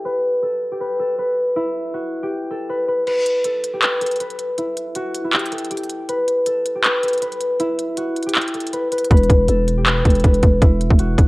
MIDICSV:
0, 0, Header, 1, 4, 480
1, 0, Start_track
1, 0, Key_signature, 1, "minor"
1, 0, Tempo, 377358
1, 64, Time_signature, 4, 2, 24, 8
1, 14346, End_track
2, 0, Start_track
2, 0, Title_t, "Harp"
2, 0, Program_c, 0, 46
2, 0, Note_on_c, 0, 64, 65
2, 0, Note_on_c, 0, 67, 76
2, 0, Note_on_c, 0, 69, 86
2, 62, Note_on_c, 0, 71, 88
2, 538, Note_off_c, 0, 69, 0
2, 543, Note_on_c, 0, 69, 84
2, 907, Note_off_c, 0, 67, 0
2, 912, Note_on_c, 0, 67, 65
2, 1017, Note_off_c, 0, 71, 0
2, 1023, Note_on_c, 0, 71, 83
2, 1259, Note_off_c, 0, 69, 0
2, 1264, Note_on_c, 0, 69, 73
2, 1501, Note_off_c, 0, 71, 0
2, 1506, Note_on_c, 0, 71, 82
2, 1980, Note_off_c, 0, 64, 0
2, 1985, Note_on_c, 0, 64, 102
2, 2465, Note_on_c, 0, 66, 82
2, 2541, Note_off_c, 0, 67, 0
2, 2833, Note_on_c, 0, 67, 79
2, 2909, Note_off_c, 0, 66, 0
2, 3180, Note_off_c, 0, 69, 0
2, 3185, Note_on_c, 0, 69, 76
2, 3420, Note_off_c, 0, 71, 0
2, 3425, Note_on_c, 0, 71, 83
2, 3659, Note_off_c, 0, 71, 0
2, 3665, Note_on_c, 0, 71, 79
2, 3899, Note_off_c, 0, 71, 0
2, 3904, Note_on_c, 0, 71, 92
2, 4381, Note_off_c, 0, 69, 0
2, 4386, Note_on_c, 0, 69, 82
2, 4747, Note_off_c, 0, 67, 0
2, 4752, Note_on_c, 0, 67, 77
2, 4858, Note_off_c, 0, 71, 0
2, 4863, Note_on_c, 0, 71, 81
2, 5099, Note_off_c, 0, 69, 0
2, 5104, Note_on_c, 0, 69, 86
2, 5307, Note_off_c, 0, 64, 0
2, 5340, Note_off_c, 0, 71, 0
2, 5345, Note_on_c, 0, 71, 78
2, 5826, Note_on_c, 0, 64, 91
2, 6306, Note_on_c, 0, 66, 90
2, 6382, Note_off_c, 0, 67, 0
2, 6667, Note_off_c, 0, 64, 0
2, 6672, Note_on_c, 0, 64, 67
2, 6787, Note_on_c, 0, 67, 90
2, 6863, Note_off_c, 0, 66, 0
2, 7017, Note_off_c, 0, 69, 0
2, 7022, Note_on_c, 0, 69, 86
2, 7259, Note_off_c, 0, 67, 0
2, 7264, Note_on_c, 0, 67, 78
2, 7738, Note_off_c, 0, 71, 0
2, 7744, Note_on_c, 0, 71, 94
2, 8220, Note_off_c, 0, 69, 0
2, 8225, Note_on_c, 0, 69, 82
2, 8586, Note_off_c, 0, 67, 0
2, 8591, Note_on_c, 0, 67, 65
2, 8698, Note_off_c, 0, 71, 0
2, 8703, Note_on_c, 0, 71, 85
2, 8937, Note_off_c, 0, 69, 0
2, 8943, Note_on_c, 0, 69, 71
2, 9177, Note_off_c, 0, 71, 0
2, 9183, Note_on_c, 0, 71, 86
2, 9659, Note_off_c, 0, 64, 0
2, 9664, Note_on_c, 0, 64, 105
2, 10142, Note_on_c, 0, 66, 80
2, 10218, Note_off_c, 0, 67, 0
2, 10511, Note_on_c, 0, 67, 75
2, 10588, Note_off_c, 0, 66, 0
2, 10861, Note_off_c, 0, 69, 0
2, 10866, Note_on_c, 0, 69, 77
2, 11100, Note_off_c, 0, 71, 0
2, 11105, Note_on_c, 0, 71, 82
2, 11340, Note_off_c, 0, 71, 0
2, 11345, Note_on_c, 0, 71, 81
2, 11578, Note_off_c, 0, 71, 0
2, 11583, Note_on_c, 0, 71, 95
2, 12060, Note_off_c, 0, 69, 0
2, 12065, Note_on_c, 0, 69, 84
2, 12426, Note_off_c, 0, 67, 0
2, 12431, Note_on_c, 0, 67, 76
2, 12537, Note_off_c, 0, 71, 0
2, 12542, Note_on_c, 0, 71, 81
2, 12779, Note_off_c, 0, 69, 0
2, 12784, Note_on_c, 0, 69, 84
2, 12986, Note_off_c, 0, 64, 0
2, 13020, Note_off_c, 0, 71, 0
2, 13025, Note_on_c, 0, 71, 79
2, 13505, Note_on_c, 0, 64, 89
2, 13983, Note_on_c, 0, 66, 90
2, 14060, Note_off_c, 0, 67, 0
2, 14346, Note_off_c, 0, 64, 0
2, 14346, Note_off_c, 0, 66, 0
2, 14346, Note_off_c, 0, 69, 0
2, 14346, Note_off_c, 0, 71, 0
2, 14346, End_track
3, 0, Start_track
3, 0, Title_t, "808-style bass"
3, 0, Program_c, 1, 38
3, 11584, Note_on_c, 1, 28, 115
3, 11815, Note_off_c, 1, 28, 0
3, 11824, Note_on_c, 1, 28, 103
3, 12054, Note_off_c, 1, 28, 0
3, 12065, Note_on_c, 1, 28, 106
3, 12756, Note_off_c, 1, 28, 0
3, 12784, Note_on_c, 1, 28, 105
3, 13015, Note_off_c, 1, 28, 0
3, 13024, Note_on_c, 1, 28, 110
3, 13255, Note_off_c, 1, 28, 0
3, 13264, Note_on_c, 1, 28, 105
3, 13494, Note_off_c, 1, 28, 0
3, 13504, Note_on_c, 1, 28, 110
3, 13857, Note_off_c, 1, 28, 0
3, 13871, Note_on_c, 1, 28, 102
3, 14210, Note_off_c, 1, 28, 0
3, 14224, Note_on_c, 1, 28, 100
3, 14346, Note_off_c, 1, 28, 0
3, 14346, End_track
4, 0, Start_track
4, 0, Title_t, "Drums"
4, 3904, Note_on_c, 9, 49, 95
4, 3905, Note_on_c, 9, 42, 81
4, 4032, Note_off_c, 9, 42, 0
4, 4032, Note_off_c, 9, 49, 0
4, 4147, Note_on_c, 9, 42, 84
4, 4274, Note_off_c, 9, 42, 0
4, 4380, Note_on_c, 9, 42, 87
4, 4507, Note_off_c, 9, 42, 0
4, 4628, Note_on_c, 9, 42, 87
4, 4756, Note_off_c, 9, 42, 0
4, 4864, Note_on_c, 9, 39, 122
4, 4867, Note_on_c, 9, 42, 78
4, 4991, Note_off_c, 9, 39, 0
4, 4994, Note_off_c, 9, 42, 0
4, 5105, Note_on_c, 9, 42, 77
4, 5169, Note_off_c, 9, 42, 0
4, 5169, Note_on_c, 9, 42, 67
4, 5232, Note_off_c, 9, 42, 0
4, 5232, Note_on_c, 9, 42, 53
4, 5289, Note_off_c, 9, 42, 0
4, 5289, Note_on_c, 9, 42, 44
4, 5345, Note_off_c, 9, 42, 0
4, 5345, Note_on_c, 9, 42, 82
4, 5472, Note_off_c, 9, 42, 0
4, 5472, Note_on_c, 9, 42, 48
4, 5582, Note_off_c, 9, 42, 0
4, 5582, Note_on_c, 9, 42, 80
4, 5709, Note_off_c, 9, 42, 0
4, 5825, Note_on_c, 9, 42, 80
4, 5952, Note_off_c, 9, 42, 0
4, 6067, Note_on_c, 9, 42, 81
4, 6194, Note_off_c, 9, 42, 0
4, 6299, Note_on_c, 9, 42, 91
4, 6427, Note_off_c, 9, 42, 0
4, 6548, Note_on_c, 9, 42, 86
4, 6675, Note_off_c, 9, 42, 0
4, 6783, Note_on_c, 9, 39, 122
4, 6784, Note_on_c, 9, 42, 49
4, 6864, Note_off_c, 9, 42, 0
4, 6864, Note_on_c, 9, 42, 66
4, 6911, Note_off_c, 9, 39, 0
4, 6944, Note_off_c, 9, 42, 0
4, 6944, Note_on_c, 9, 42, 76
4, 7024, Note_off_c, 9, 42, 0
4, 7024, Note_on_c, 9, 42, 63
4, 7104, Note_off_c, 9, 42, 0
4, 7104, Note_on_c, 9, 42, 65
4, 7184, Note_off_c, 9, 42, 0
4, 7184, Note_on_c, 9, 42, 62
4, 7264, Note_off_c, 9, 42, 0
4, 7264, Note_on_c, 9, 42, 81
4, 7344, Note_off_c, 9, 42, 0
4, 7344, Note_on_c, 9, 42, 65
4, 7424, Note_off_c, 9, 42, 0
4, 7424, Note_on_c, 9, 42, 48
4, 7500, Note_off_c, 9, 42, 0
4, 7500, Note_on_c, 9, 42, 81
4, 7627, Note_off_c, 9, 42, 0
4, 7745, Note_on_c, 9, 42, 81
4, 7872, Note_off_c, 9, 42, 0
4, 7987, Note_on_c, 9, 42, 85
4, 8114, Note_off_c, 9, 42, 0
4, 8220, Note_on_c, 9, 42, 92
4, 8347, Note_off_c, 9, 42, 0
4, 8468, Note_on_c, 9, 42, 84
4, 8595, Note_off_c, 9, 42, 0
4, 8704, Note_on_c, 9, 39, 122
4, 8707, Note_on_c, 9, 42, 77
4, 8831, Note_off_c, 9, 39, 0
4, 8834, Note_off_c, 9, 42, 0
4, 8945, Note_on_c, 9, 42, 75
4, 9008, Note_off_c, 9, 42, 0
4, 9008, Note_on_c, 9, 42, 65
4, 9072, Note_off_c, 9, 42, 0
4, 9072, Note_on_c, 9, 42, 57
4, 9129, Note_off_c, 9, 42, 0
4, 9129, Note_on_c, 9, 42, 45
4, 9185, Note_off_c, 9, 42, 0
4, 9185, Note_on_c, 9, 42, 83
4, 9312, Note_off_c, 9, 42, 0
4, 9312, Note_on_c, 9, 42, 48
4, 9421, Note_off_c, 9, 42, 0
4, 9421, Note_on_c, 9, 42, 80
4, 9548, Note_off_c, 9, 42, 0
4, 9665, Note_on_c, 9, 42, 83
4, 9792, Note_off_c, 9, 42, 0
4, 9907, Note_on_c, 9, 42, 83
4, 10034, Note_off_c, 9, 42, 0
4, 10140, Note_on_c, 9, 42, 91
4, 10267, Note_off_c, 9, 42, 0
4, 10384, Note_on_c, 9, 42, 53
4, 10464, Note_off_c, 9, 42, 0
4, 10464, Note_on_c, 9, 42, 73
4, 10545, Note_off_c, 9, 42, 0
4, 10545, Note_on_c, 9, 42, 93
4, 10624, Note_off_c, 9, 42, 0
4, 10624, Note_on_c, 9, 39, 122
4, 10624, Note_on_c, 9, 42, 47
4, 10704, Note_off_c, 9, 42, 0
4, 10704, Note_on_c, 9, 42, 65
4, 10751, Note_off_c, 9, 39, 0
4, 10784, Note_off_c, 9, 42, 0
4, 10784, Note_on_c, 9, 42, 77
4, 10864, Note_off_c, 9, 42, 0
4, 10864, Note_on_c, 9, 42, 47
4, 10944, Note_off_c, 9, 42, 0
4, 10944, Note_on_c, 9, 42, 62
4, 11024, Note_off_c, 9, 42, 0
4, 11024, Note_on_c, 9, 42, 78
4, 11106, Note_off_c, 9, 42, 0
4, 11106, Note_on_c, 9, 42, 83
4, 11233, Note_off_c, 9, 42, 0
4, 11345, Note_on_c, 9, 42, 80
4, 11425, Note_off_c, 9, 42, 0
4, 11425, Note_on_c, 9, 42, 72
4, 11505, Note_off_c, 9, 42, 0
4, 11505, Note_on_c, 9, 42, 69
4, 11584, Note_on_c, 9, 36, 123
4, 11585, Note_off_c, 9, 42, 0
4, 11585, Note_on_c, 9, 42, 64
4, 11664, Note_off_c, 9, 42, 0
4, 11664, Note_on_c, 9, 42, 55
4, 11711, Note_off_c, 9, 36, 0
4, 11745, Note_off_c, 9, 42, 0
4, 11745, Note_on_c, 9, 42, 49
4, 11824, Note_on_c, 9, 36, 92
4, 11827, Note_off_c, 9, 42, 0
4, 11827, Note_on_c, 9, 42, 81
4, 11951, Note_off_c, 9, 36, 0
4, 11954, Note_off_c, 9, 42, 0
4, 12060, Note_on_c, 9, 42, 87
4, 12187, Note_off_c, 9, 42, 0
4, 12308, Note_on_c, 9, 42, 86
4, 12435, Note_off_c, 9, 42, 0
4, 12544, Note_on_c, 9, 39, 125
4, 12547, Note_on_c, 9, 42, 76
4, 12672, Note_off_c, 9, 39, 0
4, 12674, Note_off_c, 9, 42, 0
4, 12785, Note_on_c, 9, 36, 95
4, 12785, Note_on_c, 9, 42, 77
4, 12848, Note_off_c, 9, 42, 0
4, 12848, Note_on_c, 9, 42, 66
4, 12912, Note_off_c, 9, 36, 0
4, 12912, Note_off_c, 9, 42, 0
4, 12912, Note_on_c, 9, 42, 54
4, 12968, Note_off_c, 9, 42, 0
4, 12968, Note_on_c, 9, 42, 43
4, 13024, Note_off_c, 9, 42, 0
4, 13024, Note_on_c, 9, 36, 92
4, 13024, Note_on_c, 9, 42, 83
4, 13151, Note_off_c, 9, 36, 0
4, 13152, Note_off_c, 9, 42, 0
4, 13152, Note_on_c, 9, 42, 50
4, 13261, Note_off_c, 9, 42, 0
4, 13261, Note_on_c, 9, 42, 82
4, 13264, Note_on_c, 9, 36, 99
4, 13389, Note_off_c, 9, 42, 0
4, 13391, Note_off_c, 9, 36, 0
4, 13504, Note_on_c, 9, 36, 121
4, 13505, Note_on_c, 9, 42, 82
4, 13632, Note_off_c, 9, 36, 0
4, 13632, Note_off_c, 9, 42, 0
4, 13747, Note_on_c, 9, 42, 84
4, 13870, Note_on_c, 9, 36, 93
4, 13875, Note_off_c, 9, 42, 0
4, 13980, Note_on_c, 9, 42, 89
4, 13998, Note_off_c, 9, 36, 0
4, 14107, Note_off_c, 9, 42, 0
4, 14224, Note_on_c, 9, 36, 101
4, 14228, Note_on_c, 9, 42, 87
4, 14346, Note_off_c, 9, 36, 0
4, 14346, Note_off_c, 9, 42, 0
4, 14346, End_track
0, 0, End_of_file